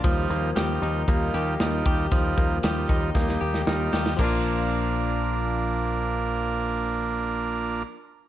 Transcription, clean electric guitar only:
\new Staff \with { instrumentName = "Clean electric guitar" } { \time 4/4 \key bes \major \tempo 4 = 116 f8 bes8 g'8 ees'8 bes8 g'8 ees'8 g'8 | f8 bes8 g'8 ees'8 bes8 g'8 ees'8 g'8 | <f bes d' f'>1~ | <f bes d' f'>1 | }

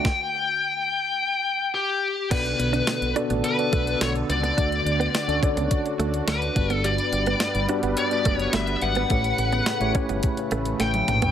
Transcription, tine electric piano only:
<<
  \new Staff \with { instrumentName = "Tine electric piano" } { \time 4/4 \key b \minor \tempo 4 = 106 r1 | <b d' fis' a' d''>4~ <b d' fis' a' d''>16 r16 <b d' fis' a' d''>8. <b d' fis' a' d''>4. r16 | <a d' fis' a' d''>4 r16 <cis' d' fis' a' d''>16 <d' fis' a' cis'' d''>4.~ <d' fis' a' cis'' d''>16 r16 <b d' fis' g' d''>8~ | <b d' fis' g' d''>4~ <b d' fis' g' d''>16 r16 <b d' fis' g' d''>8. <b d' fis' g' d''>4. r16 |
<a cis' e' g' cis''>4 r16 <a cis' e' g' cis''>16 <a cis' e' g' cis''>4.~ <a cis' e' g' cis''>16 r8. | }
  \new Staff \with { instrumentName = "Tine electric piano" } { \clef bass \time 4/4 \key b \minor r1 | b,4. r2 r8 | d4. r2 g,8~ | g,4 r2. |
a,4. r2 r8 | }
>>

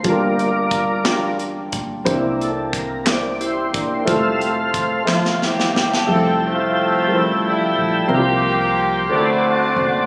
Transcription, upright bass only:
\new Staff \with { instrumentName = "Upright bass" } { \clef bass \time 6/8 \key f \major \tempo 4. = 60 g,,2~ g,,8 bes,,8 | c,2~ c,8 g,,8 | f,,2~ f,,8 g,,8 | f,,2~ f,,8 bes,,8 |
c,4. d,4 fis,,8 | }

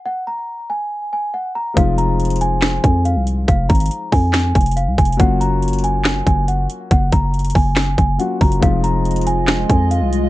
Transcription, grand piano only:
\new Staff \with { instrumentName = "Grand piano" } { \time 4/4 \key f \phrygian \tempo 4 = 140 r1 | <f aes c' ees' f'>1~ | <f aes c' ees' f'>1 | <ges bes des' f' ges'>1~ |
<ges bes des' f' ges'>2. <ges bes des' f' ges'>4 | <f aes c' ees' f'>1 | }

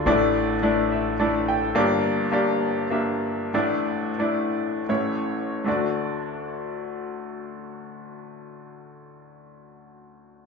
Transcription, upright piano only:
<<
  \new Staff \with { instrumentName = "Upright piano" } { \time 3/4 \key a \phrygian \tempo 4 = 86 << { r4. e''8 d''8 g''8 | r2. | r2. | r2. |
r2. | } \\ { <a d' e' d''>4 <a d' e' d''>4 <a d' e' a'>4 | <bes d' g' d''>4 <bes d' g' d''>4 <bes d' g' e''>4 | <a d' e' d''>4 <a d' e' d''>4 <a cis' e' cis''>4 | <a d' fis' d''>2.~ |
<a d' fis' d''>2. | } >> }
  \new Staff \with { instrumentName = "Upright piano" } { \clef bass \time 3/4 \key a \phrygian <a,, a,>2. | <g,, g,>2. | <a,, a,>2 <a,, a,>4 | d,2.~ |
d,2. | }
>>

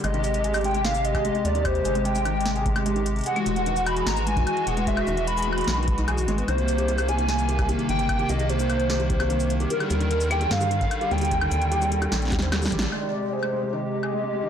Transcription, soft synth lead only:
\new Staff \with { instrumentName = "Soft synth lead" } { \time 4/4 \key aes \lydian \tempo 4 = 149 ees''4. g''8 f''8 ees''4 d''8 | c''4 g''2 r4 | fis''4. b''8 bes''8 gis''4 fis''8 | e''4 b''2 r4 |
c''4. aes''4. r8 g''8~ | g''8 ees''8 c''2~ c''8 r8 | bes'4. g''8 f''4. g''8~ | g''2. r4 |
d''4 c''4 ees''2 | }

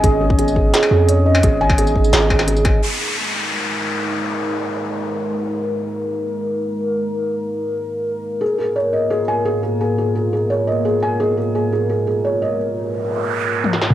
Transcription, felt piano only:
\new Staff \with { instrumentName = "Felt piano" } { \time 4/4 \key ais \phrygian \tempo 4 = 172 gis'8 gis'8 gis'8 gis'8 gis'8 gis'8 cis''8 dis''8 | gis'8 gis''8 gis'8 gis'8 gis'8 gis'8 gis'8 gis'8 | r1 | r1 |
r1 | r1 | gis'8 gis'8 cis''8 dis''8 gis'8 gis''8 gis'8 gis'8 | gis'8 gis'8 gis'8 gis'8 cis''8 dis''8 gis'8 gis''8 |
gis'8 gis'8 gis'8 gis'8 gis'8 gis'8 cis''8 dis''8 | r1 | }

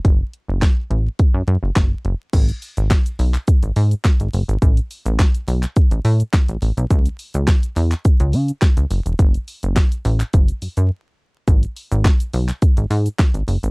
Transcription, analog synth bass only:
\new Staff \with { instrumentName = "Analog synth bass" } { \clef bass \time 4/4 \key cis \phrygian \tempo 4 = 105 fis,,8 r16 fis,,8 r16 a,,8 r16 fis,16 fis,16 fis,,16 fis,,8 fis,,16 r16 | gis,,8 r16 gis,,8 r16 b,,8 r16 gis,,16 gis,8 r16 gis,,16 fis,,16 gis,,16 | a,,8 r16 a,,8 r16 b,,8 r16 a,,16 a,8 r16 a,,16 a,,16 b,,16 | cis,8 r16 cis,8 r16 e,8 r16 cis,16 cis8 r16 cis,16 fis,,16 e,,16 |
fis,,8 r16 fis,,8 r16 a,,8 fis,,8 fis,16 fis,16 r4 | gis,,8 r16 gis,,8 r16 b,,8 r16 gis,,16 gis,8 r16 gis,,16 fis,,16 gis,,16 | }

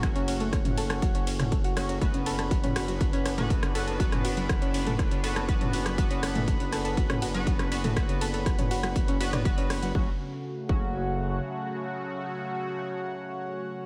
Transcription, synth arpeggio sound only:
\new Staff \with { instrumentName = "Synth arpeggio sound" } { \time 4/4 \key fis \minor \tempo 4 = 121 <fis fis'>16 <cis' cis''>16 <cis' cis''>16 <a a'>16 <a a'>16 <cis cis'>16 <a' a''>16 <a' a''>16 <fis fis'>16 <cis' cis''>16 <cis' cis''>16 <cis cis'>16 <a a'>16 <fis' fis''>16 <cis' cis''>16 <cis' cis''>16 | <a a'>16 <cis cis'>16 <a' a''>16 <a' a''>16 <fis fis'>16 <cis' cis''>16 <fis' fis''>16 <fis fis'>16 <fis fis'>16 <cis' cis''>16 <cis' cis''>16 <a a'>16 <a a'>16 <cis cis'>16 <a' a''>16 <a' a''>16 | <fis fis'>16 <cis' cis''>16 <fis' fis''>16 <fis fis'>16 <fis fis'>16 <cis' cis''>16 <cis' cis''>16 <a a'>16 <a a'>16 <cis cis'>16 <a' a''>16 <a' a''>16 <fis fis'>16 <cis' cis''>16 <fis' fis''>16 <fis fis'>16 | <fis fis'>16 <cis' cis''>16 <cis' cis''>16 <a a'>16 <a a'>16 <cis cis'>16 <a' a''>16 <a' a''>16 <fis fis'>16 <cis' cis''>16 <fis' fis''>16 <fis fis'>16 <fis fis'>16 <cis' cis''>16 <cis' cis''>16 <a a'>16 |
<a a'>16 <cis cis'>16 <a' a''>16 <a' a''>16 <fis fis'>16 <cis' cis''>16 <fis' fis''>16 <fis fis'>16 <fis fis'>16 <cis' cis''>16 <fis' fis''>16 <d' d''>16 <fis fis'>16 <cis' cis''>16 <cis' cis''>16 <fis fis'>16 | fis16 r4 r16 fis16 r2 r16 | r1 | }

